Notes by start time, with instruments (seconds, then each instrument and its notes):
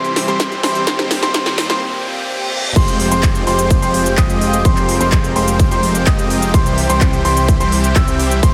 Already playing: analog synth pad C2 C3 E4 G4, supersaw synth E3 G3 C4 G4 C5, grand piano C6, riser
0.04 closed hi-hat
0.16 snare, open hi-hat
0.28 supersaw synth E3 G3 C4 G4 C5, grand piano C6, closed hi-hat
0.40 kick, snare, closed hi-hat
0.52 closed hi-hat
0.63 supersaw synth E3 G3 C4 G4 C5, grand piano C6, snare, open hi-hat
0.75 closed hi-hat
0.87 analog synth pad D#2 A#2 C4, supersaw synth D#3 G3 C4 G4 C5, grand piano C6, kick, snare, closed hi-hat
0.99 snare, closed hi-hat
1.11 snare, open hi-hat
1.22 supersaw synth D#3 G3 C4 G4 C5, grand piano C6, snare, closed hi-hat
1.34 supersaw synth D#3 G3 C4 G4 C5, kick, snare, closed hi-hat
1.46 snare, closed hi-hat
1.58 snare, open hi-hat
1.70 supersaw synth D#3 G3 C4 G4 C5, grand piano C6, snare, closed hi-hat
1.81 reverse cymbal
2.76 detuned saw bass F1, supersaw synth F3 G#3 C4 G4 C5, analog synth pad G#3 F4 C5 G5, grand piano C6, kick, closed hi-hat, crash, cabasa
2.88 closed hi-hat, cabasa
3.00 open hi-hat
3.11 detuned saw bass F1, supersaw synth F3 G#3 C4 G4 C5, grand piano C6, closed hi-hat, cabasa
3.23 kick, clap, closed hi-hat, cabasa
3.35 closed hi-hat, cabasa
3.47 detuned saw bass F1, supersaw synth F3 G#3 C4 G4 C5, grand piano C6, open hi-hat
3.59 closed hi-hat, cabasa
3.71 kick, closed hi-hat, cabasa
3.82 detuned saw bass F1, supersaw synth F3 G#3 C4 G4 C5, grand piano C6, closed hi-hat, cabasa
3.94 open hi-hat
4.06 closed hi-hat, cabasa
4.17 detuned saw bass F1, supersaw synth F3 G#3 C4 G4 D#5, grand piano D#6, kick, clap, closed hi-hat, cabasa
4.30 closed hi-hat, cabasa
4.41 open hi-hat
4.53 closed hi-hat, cabasa
4.65 detuned saw bass F1, supersaw synth F3 G#3 C4 G4 C5, analog synth pad A#4, grand piano C6, kick, closed hi-hat, cabasa
4.77 clap, closed hi-hat, cabasa
4.89 open hi-hat
5.00 detuned saw bass F1, supersaw synth F3 G#3 C4 G4 C5, grand piano C6, closed hi-hat, cabasa
5.12 kick, clap, closed hi-hat, cabasa
5.24 closed hi-hat, cabasa
5.36 detuned saw bass F1, supersaw synth F3 G#3 C4 G4 C5, grand piano C6, open hi-hat
5.48 closed hi-hat, cabasa
5.60 kick, closed hi-hat, cabasa
5.71 detuned saw bass F1, supersaw synth F3 G#3 C4 G4 C5, grand piano C6, closed hi-hat, cabasa
5.83 open hi-hat
5.95 closed hi-hat, cabasa
6.06 detuned saw bass F1, supersaw synth F3 G#3 C4 G4 D#5, grand piano D#6, kick, clap, closed hi-hat, cabasa
6.19 closed hi-hat, cabasa
6.30 open hi-hat
6.42 closed hi-hat, cabasa
6.54 detuned saw bass C2, supersaw synth E3 G3 C4 G4 C5, analog synth pad E4 G4 C5, grand piano C6, kick, closed hi-hat, cabasa
6.66 closed hi-hat, cabasa
6.78 open hi-hat
6.89 detuned saw bass C2, supersaw synth E3 G3 C4 G4 C5, grand piano C6, closed hi-hat, cabasa
7.01 kick, clap, closed hi-hat, cabasa
7.13 closed hi-hat, cabasa
7.25 detuned saw bass C2, supersaw synth E3 G3 C4 G4 C5, grand piano C6, open hi-hat
7.37 closed hi-hat, cabasa
7.48 kick, closed hi-hat, cabasa
7.60 detuned saw bass C2, supersaw synth E3 G3 C4 G4 C5, grand piano C6, closed hi-hat, cabasa
7.72 open hi-hat
7.84 closed hi-hat, cabasa
7.96 detuned saw bass C2, supersaw synth E3 G3 C4 G4 E5, grand piano E6, kick, clap, closed hi-hat, cabasa
8.08 closed hi-hat, cabasa
8.19 open hi-hat
8.31 closed hi-hat, cabasa
8.43 detuned saw bass D#1, supersaw synth D#3 A#3 C4 G4 C5, analog synth pad D#4 A#4, grand piano C6, kick, closed hi-hat, cabasa